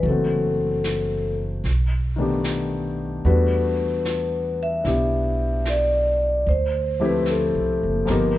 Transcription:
0.00 F#1 E3 F#3, brush sweep
0.05 A3 C4 A4
0.11 F#4
0.84 snare, hi-hat pedal
1.64 B1, brush sweep, snare
2.16 D#3 A3 B3 D4
2.21 G4
2.44 snare, hi-hat pedal
3.25 E2 G3 A3 B3 D4 F#4 B4, brush sweep
4.05 snare, hi-hat pedal
4.63 E5
4.84 B1 B3 D4 E4 G4, brush sweep, snare
5.65 snare, hi-hat pedal
5.69 D5
6.46 D2 C5, brush sweep
7.00 F3 A3 C4 E4 G4
7.05 B4
7.26 snare, hi-hat pedal
7.30 A4
7.55 C2
7.83 F#1
8.05 G1 F3 A#3 B3 D#4, brush sweep, snare
8.10 G4 A#4

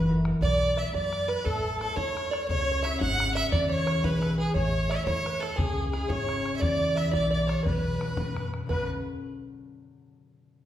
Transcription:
Already playing: F#1 F#3 A3 A4 B4 C#5
0.08 E4 F#4 A#4, bodhran
0.25 E4 F#4 A#4, bodhran
0.41 B1 B3 D5, bodhran
0.75 F#4 B4 D5 E5, bodhran
0.93 F#2 F#4 B4 D5, bodhran
1.08 D5
1.13 bodhran
1.19 D5
1.28 B4, bodhran
1.44 A1 A3 A4, bodhran
1.80 E4 A4 C#5, bodhran
1.96 E2 E4 A4 C#5, bodhran
2.17 bodhran
2.31 D5, bodhran
2.47 C#2 C#3 C#5, bodhran
2.61 C#5
2.72 C#5
2.83 C#4 E4 G#4 E5, bodhran
2.98 G#1 C#4 E4 F#5, bodhran
3.02 G#4 F#5
3.20 bodhran
3.35 E5, bodhran
3.51 E2 E3 D5, bodhran
3.69 C#5
3.87 B3 E4 G#4 C#5, bodhran
4.04 B1 B3 E4 G#4 B4, bodhran
4.22 A4, bodhran
4.38 G#4
4.54 A1 A3 C#5, bodhran
4.89 E4 A4 C#5 E5, bodhran
5.05 E2 E4 C#5, bodhran
5.09 A4 C#5
5.26 B4, bodhran
5.40 A4, bodhran
5.56 C#2 G#4, bodhran
5.60 C#3
5.91 C#4 E4 G#4, bodhran
6.08 G#1 C#4 E4 G#4 C#5, bodhran
6.29 bodhran
6.46 bodhran
6.56 D5 E5
6.61 E2 E3 D5, bodhran
6.95 B3 E4 G#4 E5, bodhran
7.11 B1 B3 E4 D5, bodhran
7.16 G#4
7.31 D5
7.47 C#5, bodhran
7.60 B4 C#5
7.66 B1 B2 B4, bodhran
8.01 B3 D4 F#4, bodhran
8.17 F#2 B3 D4 F#4, bodhran
8.36 bodhran
8.54 bodhran
8.67 B1 F#2 F#3 B3 B4, bodhran
8.71 D3 F#4

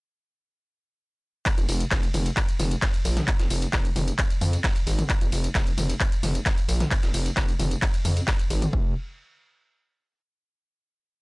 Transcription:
1.46 kick, clap, closed hi-hat, ride, tambourine
1.58 F1, closed hi-hat, tambourine
1.69 F1, closed hi-hat, open hi-hat, tambourine
1.80 closed hi-hat, tambourine
1.91 F1, kick, snare, clap, closed hi-hat, ride, tambourine
2.03 closed hi-hat, tambourine
2.14 F1, closed hi-hat, open hi-hat, mid tom, tambourine
2.26 closed hi-hat, tambourine
2.37 kick, clap, closed hi-hat, ride, tambourine
2.49 closed hi-hat, tambourine
2.60 F1, snare, closed hi-hat, open hi-hat, mid tom, tambourine
2.71 closed hi-hat, tambourine
2.82 kick, snare, clap, closed hi-hat, ride, tambourine
2.94 closed hi-hat, tambourine
3.05 A#1, closed hi-hat, open hi-hat, tambourine
3.17 snare, closed hi-hat, mid tom, tambourine
3.28 kick, clap, closed hi-hat, ride, tambourine
3.39 F1, snare, closed hi-hat, tambourine
3.50 F1, closed hi-hat, open hi-hat, tambourine
3.62 closed hi-hat, tambourine
3.73 F1, kick, snare, clap, closed hi-hat, ride, tambourine
3.85 closed hi-hat, tambourine
3.96 F1, closed hi-hat, open hi-hat, mid tom, tambourine
4.08 closed hi-hat, tambourine
4.19 kick, clap, closed hi-hat, ride, tambourine
4.30 closed hi-hat, tambourine
4.41 F2, closed hi-hat, open hi-hat, mid tom, tambourine
4.53 closed hi-hat, tambourine
4.64 kick, snare, clap, closed hi-hat, open hi-hat, ride, tambourine
4.76 closed hi-hat, tambourine
4.87 G#1, closed hi-hat, open hi-hat, tambourine
4.99 closed hi-hat, mid tom, tambourine
5.10 kick, clap, closed hi-hat, ride, tambourine
5.21 F1, closed hi-hat, tambourine
5.32 F1, closed hi-hat, open hi-hat, tambourine
5.44 closed hi-hat, tambourine
5.55 F1, kick, snare, clap, closed hi-hat, ride, tambourine
5.67 closed hi-hat, tambourine
5.78 F1, closed hi-hat, open hi-hat, mid tom, tambourine
5.90 closed hi-hat, tambourine
6.00 kick, clap, closed hi-hat, ride, tambourine
6.12 closed hi-hat, tambourine
6.23 F1, snare, closed hi-hat, open hi-hat, mid tom, tambourine
6.35 closed hi-hat, tambourine
6.46 kick, snare, clap, closed hi-hat, ride, tambourine
6.58 closed hi-hat, tambourine
6.68 A#1, closed hi-hat, open hi-hat, tambourine
6.80 snare, closed hi-hat, mid tom, tambourine
6.91 kick, clap, closed hi-hat, ride, tambourine
7.03 F1, snare, closed hi-hat, tambourine
7.14 F1, closed hi-hat, open hi-hat, tambourine
7.26 closed hi-hat, tambourine
7.37 F1, kick, snare, clap, closed hi-hat, ride, tambourine
7.49 closed hi-hat, tambourine
7.59 F1, closed hi-hat, open hi-hat, mid tom, tambourine
7.71 closed hi-hat, tambourine
7.82 kick, clap, closed hi-hat, ride, tambourine
7.94 closed hi-hat, tambourine
8.05 F2, closed hi-hat, open hi-hat, mid tom, tambourine
8.17 closed hi-hat, tambourine
8.28 kick, snare, clap, closed hi-hat, open hi-hat, ride, tambourine
8.39 closed hi-hat, tambourine
8.50 G#1, closed hi-hat, open hi-hat, tambourine
8.62 closed hi-hat, mid tom, tambourine
8.73 F1, kick

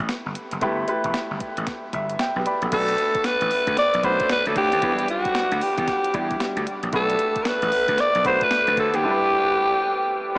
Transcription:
Already playing: A3 E4 G4 B4
0.09 muted slap bass stroke, snare, closed hi-hat
0.26 G1
0.35 closed hi-hat
0.51 F#1, closed hi-hat
0.61 G1 A3 E4 G4 B4, kick, closed hi-hat
0.88 A3 E4 G4 B4, closed hi-hat
1.04 E1, kick, closed hi-hat
1.14 snare, closed hi-hat
1.31 G1
1.40 kick, closed hi-hat
1.57 A1, closed hi-hat
1.67 kick, snare, closed hi-hat
1.93 G1 E5, kick, closed hi-hat
2.10 closed hi-hat
2.19 G5, muted slap bass stroke, snare, closed hi-hat
2.36 B1 G4 B4
2.46 B4 D5 B5, closed hi-hat
2.62 A#1 F#4 A4, closed hi-hat
2.72 B1 A3 D4 F#4 A4 B4, kick, closed hi-hat, crash
2.89 closed hi-hat
2.98 closed hi-hat
3.15 muted slap bass stroke, kick, closed hi-hat
3.24 B4, snare, closed hi-hat
3.41 A1, closed hi-hat
3.51 open hi-hat
3.67 D2, kick, closed hi-hat
3.77 D5, muted slap bass stroke, snare, closed hi-hat
3.94 B1, closed hi-hat
4.03 A3 C#4 F#4 B4 C5, kick, closed hi-hat
4.10 D4
4.20 kick, closed hi-hat
4.30 B4, snare, closed hi-hat
4.46 D2 A4, closed hi-hat
4.56 D2 G4, kick, closed hi-hat
4.72 D#2, closed hi-hat
4.82 E2 F#3 D4 E4 B4, kick, closed hi-hat
4.89 G3
4.99 closed hi-hat
5.08 F#4, closed hi-hat
5.25 muted slap bass stroke, kick, closed hi-hat
5.35 snare, closed hi-hat
5.51 D2, closed hi-hat
5.61 G4, open hi-hat
5.78 E2, kick, closed hi-hat
5.88 kick, snare, closed hi-hat
6.04 closed hi-hat
6.14 E2 G3 D4 E4 D5, kick, closed hi-hat
6.31 kick, closed hi-hat
6.40 muted slap bass stroke, snare, closed hi-hat
6.56 D2, closed hi-hat
6.67 closed hi-hat
6.83 A#1, closed hi-hat
6.93 B1 A3 D4 F#4 A4 B4, kick, closed hi-hat
7.10 closed hi-hat
7.19 closed hi-hat
7.36 muted slap bass stroke, kick, closed hi-hat
7.42 A#4, snare, closed hi-hat
7.48 B4
7.62 A1, closed hi-hat
7.72 open hi-hat
7.88 D2, kick, closed hi-hat
7.98 D5, muted slap bass stroke, snare, closed hi-hat
8.15 B1, closed hi-hat
8.24 A3 D4 F#4 B4 C5, kick, closed hi-hat
8.41 B4, kick, closed hi-hat
8.51 snare, closed hi-hat
8.67 D2, closed hi-hat
8.77 D2 A4, kick, closed hi-hat
8.94 D#2 G4, closed hi-hat
9.04 G3 D4 E4 A4
9.11 B4

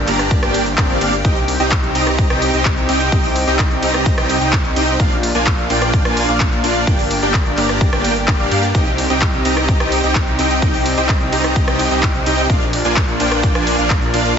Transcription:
Already playing: A#3 D4 G4
0.07 G1 A#3 D4 G4 D5 A#5, clap, open hi-hat, ride
0.19 cross-stick, closed hi-hat
0.31 kick, closed hi-hat, swell
0.43 G1 A#3 D4 G4 D5 G5, cross-stick, closed hi-hat
0.54 open hi-hat, ride
0.66 closed hi-hat
0.78 G1 A#3 D4 G4 D5 G5, kick, clap, closed hi-hat
0.90 G1 A#3 D4 G4 D5 F5, closed hi-hat
1.01 G1 A#3 D4 G4 D5 F5, open hi-hat, ride
1.13 closed hi-hat
1.25 C2 C3 C4 D#4 G4 D#5 G5, kick, closed hi-hat
1.37 closed hi-hat
1.48 open hi-hat, ride
1.60 C2 C4 D#4 G4 D#5 G5, closed hi-hat
1.72 kick, clap, closed hi-hat
1.83 closed hi-hat
1.95 C2 C4 D#4 G4 D#5 A#5, open hi-hat, ride
2.07 cross-stick, closed hi-hat
2.18 kick, closed hi-hat
2.30 C2 C4 D#4 G4 D#5 G5, cross-stick, closed hi-hat
2.42 open hi-hat, ride
2.54 C2 C4 D#4 G4 D#5 G5, closed hi-hat
2.65 kick, clap, closed hi-hat
2.77 closed hi-hat
2.89 C2 C4 D#4 G4 D#5 G5, open hi-hat, ride
3.01 closed hi-hat
3.12 C2 C4 D#4 G4 D#5 G5, kick, closed hi-hat
3.24 open hi-hat
3.36 open hi-hat, ride
3.47 C2 C4 D#4 G4 D#5 G5, closed hi-hat
3.59 kick, clap, closed hi-hat
3.71 closed hi-hat
3.82 C2 C4 D#4 G4 D#5 A#5, open hi-hat, ride
3.94 cross-stick, closed hi-hat
4.06 kick, closed hi-hat
4.18 C2 C4 D#4 G4 D#5 G5, cross-stick, closed hi-hat
4.29 open hi-hat, ride
4.41 C2 C4 D#4 G4 D#5 G5, closed hi-hat
4.53 kick, clap, closed hi-hat
4.65 closed hi-hat
4.76 C2 C4 D#4 G4 D#5 G5, open hi-hat, ride
4.88 closed hi-hat
5.00 A#1 A#3 D4 F4 D5 F5, kick, closed hi-hat
5.12 closed hi-hat
5.23 open hi-hat, ride
5.35 A#1 A#3 D4 F4 D5 G#5, closed hi-hat
5.47 kick, clap, closed hi-hat
5.58 closed hi-hat
5.70 A#1 A#3 D4 F4 D5 G5, open hi-hat, ride
5.82 cross-stick, closed hi-hat
5.93 kick, closed hi-hat
6.05 A#1 A#3 D4 F4 D5 G#5, cross-stick, closed hi-hat
6.17 open hi-hat, ride
6.29 A#1 A#3 D4 F4 D5 F5, closed hi-hat
6.40 kick, clap, closed hi-hat
6.52 closed hi-hat
6.64 A#1 A#3 D4 F4 D5 F5, open hi-hat, ride
6.76 closed hi-hat
6.87 G1 A#3 D4 G4 D5 G5, kick, closed hi-hat
6.99 open hi-hat
7.11 open hi-hat, ride
7.22 G1 A#3 D4 G4 D5 G5, closed hi-hat
7.34 kick, clap, closed hi-hat
7.46 closed hi-hat
7.58 G1 A#3 D4 G4 D5 A#5, clap, open hi-hat, ride
7.69 cross-stick, closed hi-hat
7.81 kick, closed hi-hat
7.93 G1 A#3 D4 G4 D5 G5, cross-stick, closed hi-hat
8.04 open hi-hat, ride
8.16 closed hi-hat
8.28 G1 A#3 D4 G4 D5 G5, kick, clap, closed hi-hat
8.40 G1 A#3 D4 G4 D5 F5, closed hi-hat
8.51 G2 A#3 D4 G4 D5 F5, open hi-hat, ride
8.63 closed hi-hat
8.75 C2 C3 C4 D#4 G4 D#5 G5, kick, closed hi-hat
8.87 closed hi-hat
8.98 open hi-hat, ride
9.10 C2 C4 D#4 G4 D#5 G5, closed hi-hat
9.22 kick, clap, closed hi-hat
9.33 closed hi-hat
9.45 C2 C4 D#4 G4 D#5 A#5, open hi-hat, ride
9.57 cross-stick, closed hi-hat
9.68 kick, closed hi-hat
9.80 C2 C4 D#4 G4 D#5 G5, cross-stick, closed hi-hat
9.92 open hi-hat, ride
10.04 C2 C4 D#4 G4 D#5 G5, closed hi-hat
10.15 kick, clap, closed hi-hat
10.27 closed hi-hat
10.39 C2 C4 D#4 G4 D#5 G5, open hi-hat, ride
10.51 closed hi-hat
10.62 C2 C4 D#4 G4 D#5 G5, kick, closed hi-hat
10.74 open hi-hat
10.86 open hi-hat, ride
10.97 C2 C4 D#4 G4 D#5 G5, closed hi-hat
11.09 kick, clap, closed hi-hat
11.21 closed hi-hat
11.33 C2 C4 D#4 G4 D#5 A#5, open hi-hat, ride
11.44 cross-stick, closed hi-hat
11.56 kick, closed hi-hat
11.68 C2 C4 D#4 G4 D#5 G5, cross-stick, closed hi-hat
11.79 open hi-hat, ride
11.91 C2 C4 D#4 G4 D#5 G5, closed hi-hat
12.03 kick, clap, closed hi-hat
12.15 closed hi-hat
12.26 C2 C4 D#4 G4 D#5 G5, open hi-hat, ride
12.38 closed hi-hat
12.50 A#1 F3 A#3 D4 F4 D5 F5, kick, closed hi-hat
12.61 closed hi-hat
12.73 open hi-hat, ride
12.85 A#1 A#3 D4 F4 D5 G#5, closed hi-hat
12.97 kick, clap, closed hi-hat
13.08 closed hi-hat
13.20 A#1 A#3 D4 F4 D5 G5, open hi-hat, ride
13.32 cross-stick, closed hi-hat
13.43 kick, closed hi-hat
13.55 A#1 A#3 D4 F4 D5 G#5, cross-stick, closed hi-hat
13.67 open hi-hat, ride
13.79 A#1 A#3 D4 F4 D5 F5, closed hi-hat
13.90 kick, clap, closed hi-hat
14.02 closed hi-hat
14.14 A#1 A#3 D4 F4 D5 F5, open hi-hat, ride
14.25 closed hi-hat

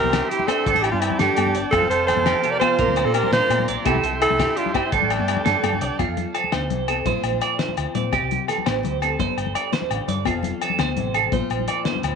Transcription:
Already playing: E3 C4 E4 G4 A#4 E5 G5 C6
0.04 C2, high conga, low conga
0.13 G4, snare, closed hi-hat, low agogo
0.30 G2 E4 G4, closed hi-hat
0.39 low conga
0.47 D4 G4 A4 C5, closed hi-hat, high conga, low conga, low agogo
0.66 G1 G2 C4 A4 D5 A5, kick, closed hi-hat
0.74 A1 D4, low conga
0.82 D4 E4 G4, muted clean electric guitar stroke, closed hi-hat, low agogo
0.91 G2 D4 F4, high conga
1.01 G3 C4 E4, closed hi-hat, low agogo
1.10 low conga
1.19 G2 D4 G4 A4, snare, closed hi-hat
1.36 G2 D4, closed hi-hat, high conga, low agogo
1.46 low conga
1.55 G1 D4 D5, closed hi-hat
1.71 F1 F2 C4 F4 A4 F5, kick, closed hi-hat, high conga, low conga, low agogo
1.82 low conga
1.89 F1 A4 C5, closed hi-hat
2.06 F3 A4 C5, snare, closed hi-hat, low agogo
2.16 F1, high conga, low conga
2.26 G4 A4, snare, closed hi-hat, low agogo
2.43 C3 F4 G4, closed hi-hat, low conga
2.51 A#4 D5
2.59 F4 A4 C5, closed hi-hat, high conga, low conga, low agogo
2.79 A#1 A#2 C4 A#4 D5 A#5 C6, kick, closed hi-hat
2.88 D2, low conga
2.96 D4 C5, closed hi-hat, low agogo
3.04 A#2 F4 A4, high conga
3.14 F3 G4 A#4, closed hi-hat, low agogo
3.24 low conga
3.31 G2 A#2 F4 A#4 C5, snare, closed hi-hat
3.50 A2 A#2, closed hi-hat, high conga, low agogo
3.59 low conga
3.68 A#1 A#2 D5, closed hi-hat
3.85 C2 C3 E4 G4 A4 E5 G5, muted steel-string acoustic guitar stroke, kick, closed hi-hat, high conga, low agogo
3.95 low conga
4.03 C2 E4, closed hi-hat, low conga
4.13 low conga
4.21 E3 E4 A4, closed hi-hat, low agogo
4.30 C2, high conga, low conga
4.39 G4, kick, snare, closed hi-hat, low agogo
4.56 G2 D4 E4 F4 G4, closed hi-hat
4.66 low conga
4.74 E4 G4 C5, kick, closed hi-hat, high conga, low agogo
4.85 C4 E4
4.92 G1 G2 A3 D4 A4 D5 A5, kick, closed hi-hat
5.02 A1, low conga
5.10 A4, closed hi-hat, low agogo
5.19 G2, high conga
5.28 G3, closed hi-hat, low agogo
5.37 low conga
5.45 G2 A4, snare, closed hi-hat
5.63 G2 D3 A4, closed hi-hat, high conga, low conga, low agogo
5.73 low conga
5.81 C2 A4 D5, closed hi-hat
5.99 F2 F4 A4, muted steel-string acoustic guitar stroke, kick, closed hi-hat, high conga, low agogo
6.08 F2
6.17 closed hi-hat, low conga
6.34 F3 A4, closed hi-hat, low agogo
6.44 low conga
6.52 D2 C5, snare, closed hi-hat, high conga, low agogo
6.70 C2 C3, closed hi-hat, low conga
6.88 C4 A4, closed hi-hat, low conga, low agogo
7.05 A#1 A#2 F4 C5, kick, closed hi-hat, high conga, low conga
7.23 A#1, closed hi-hat, low agogo
7.32 low conga
7.41 F3 D5, closed hi-hat, low agogo
7.59 C5, snare, closed hi-hat, high conga
7.69 low conga
7.77 D2 F2, closed hi-hat, low agogo
7.95 A#2 C4 D5, closed hi-hat, low conga
8.04 low conga
8.12 C2 C3 G4, kick, closed hi-hat, high conga, low agogo
8.22 C2
8.31 closed hi-hat, low conga
8.48 E3 A4, snare, closed hi-hat, low agogo
8.58 low conga
8.66 A1 C5, snare, closed hi-hat, high conga, low agogo
8.83 D2 G2, closed hi-hat, low conga
9.02 C4 A4, closed hi-hat, low agogo
9.19 G1 G2 A4 C5, kick, closed hi-hat, high conga, low conga
9.37 G1, closed hi-hat, low agogo
9.46 low conga
9.55 G3 D5, closed hi-hat, low conga, low agogo
9.73 C5, snare, closed hi-hat, high conga
9.82 low conga
9.91 A1 D3, closed hi-hat, low conga, low agogo
10.08 G2 D4 D5, closed hi-hat, low conga
10.17 low conga
10.25 F1 F2 F4 A4, kick, closed hi-hat, high conga, low agogo
10.35 F1
10.43 closed hi-hat, low conga
10.61 F3 A4, closed hi-hat, low agogo
10.70 low conga
10.79 D2 C5, snare, closed hi-hat, high conga, low agogo
10.96 A1 C3, closed hi-hat, low conga
11.14 C4 A4, closed hi-hat, low agogo
11.32 A#1 A#2 F4 C5, kick, closed hi-hat, high conga, low conga
11.50 A#1, closed hi-hat, low agogo
11.59 low conga
11.68 F3 D5, closed hi-hat, low conga, low agogo
11.85 G2 C5, snare, closed hi-hat, high conga
11.95 low conga
12.03 D2 A2, closed hi-hat, low agogo

